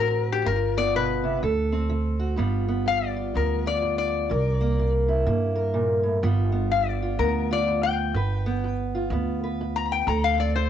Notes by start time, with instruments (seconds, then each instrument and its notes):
Already playing: upright bass A1, steel-string acoustic guitar D3 C4 F#4
0.00 resonator guitar played with a steel bar A#4
0.32 resonator guitar played with a steel bar G4
0.45 upright bass G1, steel-string acoustic guitar G2 F4, resonator guitar played with a steel bar A#4
0.77 steel-string acoustic guitar B3, resonator guitar played with a steel bar D5
0.94 steel-string acoustic guitar B2, resonator guitar played with a steel bar B4
1.24 steel-string acoustic guitar C3
1.43 upright bass D2, steel-string acoustic guitar D3 A4
1.72 steel-string acoustic guitar C4
1.89 steel-string acoustic guitar D3
2.19 steel-string acoustic guitar F#4
2.36 upright bass G1, steel-string acoustic guitar G2 G3 B3 F4
2.68 steel-string acoustic guitar B3
2.86 steel-string acoustic guitar G2, resonator guitar played with a steel bar F5
3.06 resonator guitar played with a steel bar D5
3.16 steel-string acoustic guitar F4
3.34 upright bass D2, steel-string acoustic guitar G2 B3, resonator guitar played with a steel bar A#4
3.66 steel-string acoustic guitar F4, resonator guitar played with a steel bar D5
3.82 steel-string acoustic guitar G2
3.98 resonator guitar played with a steel bar D5
4.30 upright bass C2, steel-string acoustic guitar C3 A#4
4.61 steel-string acoustic guitar A#3
4.79 steel-string acoustic guitar C3
5.08 steel-string acoustic guitar E4
5.26 upright bass G2, steel-string acoustic guitar C3 A#3
5.55 steel-string acoustic guitar A#4
5.74 steel-string acoustic guitar A#2
6.03 steel-string acoustic guitar A2
6.23 upright bass G1, steel-string acoustic guitar G2 G3 B3 F4
6.52 steel-string acoustic guitar B3
6.71 steel-string acoustic guitar G2, resonator guitar played with a steel bar F5
6.88 resonator guitar played with a steel bar D5
7.02 steel-string acoustic guitar F4
7.19 upright bass D2, steel-string acoustic guitar G2 B3, resonator guitar played with a steel bar A#4
7.51 steel-string acoustic guitar F4, resonator guitar played with a steel bar D5
7.68 steel-string acoustic guitar G2
7.83 resonator guitar played with a steel bar G5
8.14 upright bass G1, steel-string acoustic guitar G2 B4
8.46 steel-string acoustic guitar B3
8.64 steel-string acoustic guitar G2
8.95 steel-string acoustic guitar F4
9.10 upright bass D2, steel-string acoustic guitar G2 B3
9.44 steel-string acoustic guitar B4
9.61 steel-string acoustic guitar G2
9.76 resonator guitar played with a steel bar A#5
9.92 resonator guitar played with a steel bar G5
10.07 upright bass D2, steel-string acoustic guitar D3 A4, resonator guitar played with a steel bar A#5
10.24 resonator guitar played with a steel bar F5
10.38 steel-string acoustic guitar C4, resonator guitar played with a steel bar D5
10.56 steel-string acoustic guitar D3, resonator guitar played with a steel bar C5